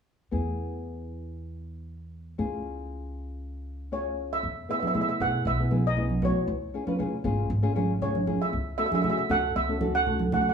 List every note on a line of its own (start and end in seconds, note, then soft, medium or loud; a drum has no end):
0.31 2.34 E2 medium
0.31 2.33 B3 medium
0.31 2.33 E4 soft
0.31 2.34 G#4 medium
2.38 4.40 C#2 medium
2.38 3.89 C#4 medium
2.38 3.89 F4 medium
2.38 3.89 G#4 medium
3.92 4.43 C#4 soft
3.92 4.43 F4 soft
3.92 4.43 G#4 soft
3.92 4.29 C#5 medium
4.33 4.69 E5 medium
4.43 4.64 E2 medium
4.69 4.77 B3 medium
4.69 4.77 E4 soft
4.69 4.77 G#4 medium
4.69 4.78 E5 medium
4.80 4.89 B3 medium
4.80 4.90 E4 medium
4.80 4.90 G#4 medium
4.80 4.86 E5 medium
4.80 high conga medium
4.87 4.93 E5 medium
4.94 5.10 B3 medium
4.94 5.10 E4 medium
4.94 5.11 G#4 medium
4.94 5.00 E5 medium
4.94 low conga medium
5.01 5.08 E5 medium
5.09 5.16 E5 medium
5.20 5.41 B1 medium
5.20 5.44 B3 medium
5.20 5.44 E4 medium
5.20 5.44 G#4 medium
5.20 5.45 F#5 medium
5.20 low conga medium
5.45 6.27 B1 medium
5.45 5.83 E5 medium
5.59 5.67 B3 medium
5.59 5.67 E4 medium
5.59 5.67 G#4 medium
5.71 5.87 B3 medium
5.71 5.87 E4 medium
5.71 5.87 G#4 medium
5.71 high conga medium
5.87 6.25 D#5 medium
5.97 6.13 B3 medium
5.97 6.13 E4 medium
5.97 6.13 G#4 medium
5.97 low conga medium
6.10 high conga medium
6.22 6.48 B3 medium
6.22 6.48 E4 medium
6.22 6.48 F#4 medium
6.22 6.72 C#5 medium
6.22 high conga medium
6.22 low conga medium
6.47 6.68 C#2 medium
6.74 6.82 C#4 medium
6.74 6.82 F4 medium
6.74 6.82 G#4 medium
6.87 6.94 C#4 medium
6.87 6.95 F4 medium
6.87 6.95 B4 medium
6.87 high conga medium
6.99 7.15 C#4 medium
6.99 7.15 F4 medium
6.99 7.15 G#4 medium
6.99 low conga medium
7.24 7.45 G#1 medium
7.24 7.48 C#4 medium
7.24 7.48 F4 medium
7.24 7.48 G#4 medium
7.24 low conga medium
7.50 8.32 G#1 medium
7.63 7.71 C#4 medium
7.63 7.71 F4 medium
7.63 7.71 G#4 medium
7.76 7.92 C#4 medium
7.76 7.92 F4 medium
7.76 7.92 G#4 medium
7.76 high conga medium
8.02 8.18 C#4 medium
8.02 8.18 F4 medium
8.02 8.18 G#4 medium
8.02 8.42 C#5 medium
8.02 low conga medium
8.15 high conga medium
8.27 8.53 C#4 medium
8.27 8.53 F4 medium
8.27 8.53 G#4 medium
8.27 high conga medium
8.42 8.77 E5 medium
8.53 8.74 C#2 medium
8.78 8.87 C#4 medium
8.78 8.87 F#4 medium
8.78 8.87 A4 medium
8.78 8.85 E5 medium
8.86 8.94 E5 medium
8.91 8.99 C#4 medium
8.91 8.99 F#4 medium
8.91 8.99 G#4 medium
8.91 high conga medium
8.95 9.01 E5 medium
9.02 9.20 C#4 medium
9.02 9.20 F#4 medium
9.02 9.20 G#4 medium
9.02 9.09 E5 medium
9.02 low conga medium
9.10 9.16 E5 medium
9.18 9.24 E5 medium
9.29 9.50 C#2 medium
9.29 9.53 C#4 medium
9.29 9.53 F#4 medium
9.29 9.53 A4 medium
9.29 9.54 F#5 medium
9.29 low conga medium
9.56 10.38 C#2 medium
9.56 9.96 E5 medium
9.69 9.76 C#4 medium
9.69 9.76 F#4 medium
9.69 9.76 A4 medium
9.80 9.97 C#4 medium
9.80 9.97 F#4 medium
9.80 9.97 A4 medium
9.80 high conga medium
9.95 10.30 F#5 loud
10.06 10.22 C#4 medium
10.06 10.22 F#4 medium
10.06 10.23 A4 medium
10.06 low conga medium
10.19 high conga medium
10.32 10.54 C#4 medium
10.32 10.54 F#4 medium
10.32 10.54 A4 medium
10.32 10.40 F#5 medium
10.32 high conga medium
10.32 low conga medium
10.41 10.48 F#5 medium
10.49 10.54 F#5 medium